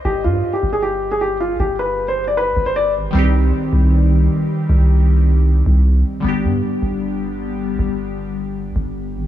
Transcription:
X:1
M:4/4
L:1/16
Q:1/4=155
K:Cm
V:1 name="Grand piano"
G2 F3 G2 A G3 A G2 F2 | G2 =B3 c2 d B3 c d2 z2 | z16 | z16 |
z16 | z16 |]
V:2 name="Synth keys"
z16 | z16 | [E,G,CEG]16- | [E,G,CEG]16 |
[D,G,=B,DG]16- | [D,G,=B,DG]16 |]
V:3 name="808-style bass" clef=bass
G,,,2 G,,2 z2 G,,,8- G,,,2 | G,,,8- G,,,2 G,,,4 A,,, G,,, | C,,4 z2 C,,6 z4 | C,,8- C,,2 C,,4 z2 |
G,,,2 G,,2 z2 G,,,8- G,,,2 | G,,,8- G,,,2 G,,,4 A,,, z |]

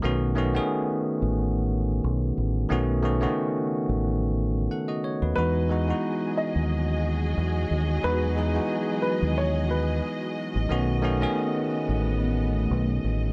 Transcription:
X:1
M:4/4
L:1/16
Q:"Swing 16ths" 1/4=90
K:E
V:1 name="Upright piano"
z16 | z16 | B6 d6 z4 | B6 B2 c2 B3 z3 |
z16 |]
V:2 name="String section"
z16 | z16 | [F,FGd]16- | [F,FGd]16 |
[A,B,]16 |]
V:3 name="Tine electric piano"
z16 | z12 [Af] [Fd] c [DB]- | [DB] z12 z3 | z16 |
z16 |]
V:4 name="Tine electric piano"
[D,A,B,CF]2 [D,A,B,CF] [D,A,B,CG]6- [D,A,B,CG] z6 | [D,A,B,CF]2 [D,A,B,CF] [C,D,A,B,CF]6- [C,D,A,B,CF] z6 | [E,G,B,DF]2 [E,G,B,DF] [G,B,DEF]6- [G,B,DEF] z6 | [E,G,B,DF]2 [E,G,B,DG] [G,B,DEF]6- [G,B,DEF] z6 |
[D,A,B,CF]2 [D,A,B,CF] [D,A,B,CG]6- [D,A,B,CG] z6 |]
V:5 name="Fingered electric bass" clef=bass
B,,,4 z3 A,,,4- A,,, B,,,2 A,,,2 | B,,,4 z3 A,,,4- A,,, z3 D,, | E,,4 z3 D,,4- D,, E,,2 D,,2 | E,,4 z3 D,,4- D,, z3 A,,, |
B,,,4 z3 A,,,4- A,,, B,,,2 A,,,2 |]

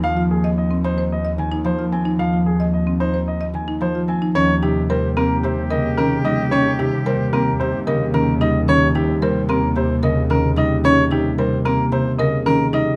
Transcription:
X:1
M:4/4
L:1/16
Q:1/4=111
K:Ebmix
V:1 name="Grand piano"
f z A z e z c z e z a z c z a z | f z A z e z c z e z a z c z a z | d z G z c z B z c z e z B z e z | d z G z c z B z c z e z B z e z |
d z G z c z B z c z e z B z e z | d z G z c z B z c z e z B z e z |]
V:2 name="Soprano saxophone"
z16 | z16 | G16- | G12- G3 z |
z16 | z16 |]
V:3 name="Marimba"
z F z e z C z c z e z E z F z E | z F z e z C z c z e z E z F z E | D z E z B z C z G z B z D z E z | D z E z B z C z G z B z D z E z |
D z E z B z C z G z B z D z E z | D z E z B z C z G z B z D z E z |]
V:4 name="Harp" clef=bass
[E,F,CE]6 E4 E,2 F,2 C2 | F,6 E4 E,2 F,2 C2 | E,2 C,2 G,2 B,2 C,2 D,2 E,2 G,2 | E,2 C,2 G,2 B,2 C,2 D,2 E,2 G,2 |
E,2 C,2 G,2 B,2 C,2 D,2 E,2 G,2 | E,2 C,2 G,2 B,2 C,2 D,2 E,2 G,2 |]
V:5 name="Double bass section" clef=bass
E,,16- | E,,16 | E,,16- | E,,16- |
E,,16- | E,,16 |]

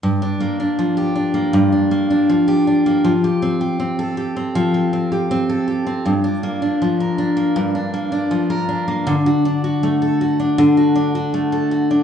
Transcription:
X:1
M:4/4
L:1/16
Q:1/4=80
K:Gm
V:1 name="Steel-string acoustic guitar"
G,, D B, D F, G D B, G,, D B, D F, G D B, | F, G C G C A G C F, G C G C A G C | G,, D B, D F, B D B, G,, D B, D F, B D B, | D, ^F D F A, A F D D, F D F A, A F D |]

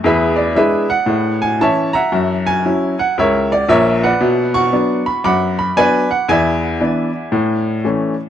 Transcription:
X:1
M:4/4
L:1/8
Q:"Swing" 1/4=115
K:A
V:1 name="Upright piano"
[GBe] d [GBe] f2 g [cea] [ef_b]- | [ef_b] g2 f [^Ace] d [Ace] [=Bdf]- | [Bdf] [fc']2 b [fbd'] b [Bdg] f | [deg]6- [deg] z |]
V:2 name="Upright piano" clef=bass
E,,2 [G,DE]2 A,,2 [E,CE]2 | F,,2 [F,CE]2 C,,2 [^A,,,^A,,]2 | B,,2 [F,B,D]2 F,,2 [F,B,D]2 | E,,2 [E,B,D]2 A,,2 [E,A,C]2 |]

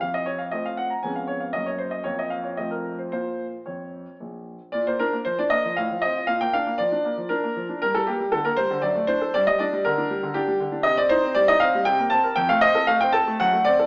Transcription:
X:1
M:3/4
L:1/16
Q:1/4=117
K:Bbm
V:1 name="Grand piano"
f e d f e f g b a f d f | e d c e d e f d e B2 c | c4 d4 z4 | [K:Bb] d c B2 c d e2 f2 e2 |
f g f2 d4 B4 | B A G2 A B c2 d2 c2 | d e d2 B4 G4 | e d c2 d e f2 g2 a2 |
g f e2 f g a2 ^f2 d2 |]
V:2 name="Grand piano"
F,,4 [=A,CF]4 [F,,_A,_CD]4 | [G,,B,D]4 [F,,F,B,F]4 [F,,F,=A,F]4 | [B,,B,F]4 F,,4 B,,,4 | [K:Bb] B,, B, D B, F, D B, F, A,, F, C F |
B,, B, D B, F, D B, F, D B, F, D | G,, G, B, G, D, B, G, D, ^F,, A, D A | G,, G, D G, D, D G, D, D G, D, D | C, C E C G, E C G, C, B, C B |
F,, A, C A A, C A A, ^F,, A, C A |]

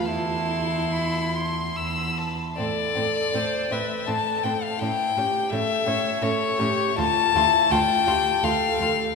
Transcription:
X:1
M:3/4
L:1/16
Q:1/4=81
K:Am
V:1 name="Violin"
c'8 b3 z | d6 e2 a2 g f | g4 e4 ^c4 | a4 g4 f4 |]
V:2 name="Viola"
E8 z4 | A4 c2 B2 A4 | E2 G2 A2 ^c2 A2 G2 | F2 E2 F2 G2 A4 |]
V:3 name="Violin"
a4 b2 c'2 e'2 a2 | C2 C2 C2 C2 C2 C2 | ^C2 C2 C2 C2 C2 C2 | F2 F2 F2 F2 F2 F2 |]
V:4 name="Cello" clef=bass
E,,8 E,,3 z | A,,2 A,,2 A,,2 A,,2 A,,2 A,,2 | A,,2 A,,2 A,,2 A,,2 A,,2 A,,2 | D,,2 D,,2 D,,2 D,,2 D,,2 D,,2 |]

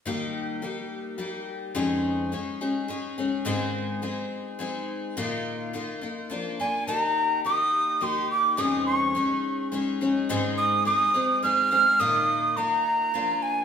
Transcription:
X:1
M:3/4
L:1/8
Q:1/4=105
K:Eb
V:1 name="Tin whistle"
z6 | z6 | z6 | z4 z a |
b2 e'2 c' d' | e' _d'3 z2 | z e' e'2 f'2 | e'2 b3 a |]
V:2 name="Twelve-string acoustic guitar"
[E,G,B,EG]2 [G,B,EG]2 [G,B,EG]2 | [F,,E,A,_DEA]2 [A,DEA] [A,DEA] [A,DEA] [A,DEA] | [A,,E,A,CEA]2 [A,CEA]2 [A,CEA]2 | [B,,E,B,EF]2 [E,B,EF] [B,EF] [F,B,DF] [B,DF] |
[E,B,EG]2 [E,B,EG]2 [E,B,EG]2 | [F,,E,A,_DEA]2 [A,DEA]2 [A,DEA] [A,DEA] | [A,,E,A,CEA]2 [A,CEA] [A,CEA] [A,CEA] [A,CEA] | [B,,E,B,EF]2 [E,B,EF]2 [F,B,DF]2 |]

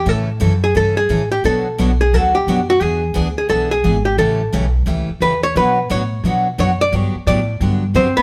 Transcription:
X:1
M:4/4
L:1/16
Q:"Swing" 1/4=175
K:Amix
V:1 name="Hollow-body jazz guitar"
A6 ^G2 A2 G4 =G2 | A6 ^G2 A2 =G4 F2 | ^G6 G2 A2 G4 =G2 | A6 z6 B2 c2 |
B4 c4 z4 c2 d2 | c4 d4 z4 [=C=c]2 [B,B]2 |]
V:2 name="Steel-string acoustic guitar"
[C,E,A,CA]2 z2 [C,E,A,CA] z3 [C,E,A,CA]2 z2 [C,E,A,CA] z3 | [B,,F,B,DFc]2 z2 [B,,F,B,DFc] z3 [B,,F,B,DFc]2 z2 [B,,F,B,DFc] z3 | [E,B,D^G]2 z2 [E,B,DG] z3 [E,B,DG]2 z2 [E,B,DG] z3 | [C,E,A,CG]2 z2 [C,E,A,CG] z3 [C,E,A,CG]2 z2 [C,E,A,CG] z3 |
[B,,F,B,DFc]2 z2 [B,,F,B,DFc] z3 [B,,F,B,DFc]2 z2 [B,,F,B,DFc] z3 | [D,F,B,DG]2 z2 [D,F,B,DG] z3 [D,F,B,DG]2 z2 [D,F,B,DG] z3 |]
V:3 name="Upright bass" clef=bass
A,,4 F,,4 G,,4 A,,4 | B,,4 B,,,4 D,,4 F,,4 | E,,4 D,,4 B,,,4 ^G,,,4 | A,,,4 B,,,4 C,,2 z2 E,,4 |
B,,4 A,,4 B,,4 F,,4 | G,,2 z2 A,,4 G,,4 F,,2 z2 |]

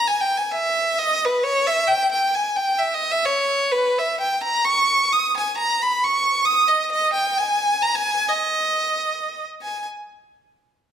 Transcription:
X:1
M:3/4
L:1/16
Q:"Swing" 1/4=132
K:G#m
V:1 name="Violin"
(3g2 =g2 ^g2 e4 d2 B2 | c2 e2 =g2 g2 ^g2 =g2 | (3e2 d2 e2 c4 B2 e2 | =g2 a2 c'4 d'2 ^g2 |
a2 b2 c'4 d'2 d2 | d2 =g2 ^g4 a g3 | d8- d2 z2 | g2 z8 z2 |]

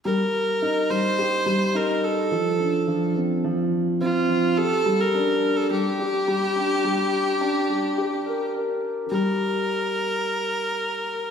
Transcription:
X:1
M:4/4
L:1/16
Q:1/4=106
K:Gm
V:1 name="Viola"
B6 c6 B2 A2- | A6 z6 F4 | A3 B4 A G8- | G12 z4 |
B16 |]
V:2 name="Upright piano"
G,2 z2 E2 G,2 G2 G,2 E2 z2 | F,2 D2 F,2 C2 F,2 z2 C2 F,2 | G2 G,2 D2 z2 G,2 G2 G,2 D2 | G,2 z2 D2 G,2 G2 B2 B2 z2 |
G,2 z12 z2 |]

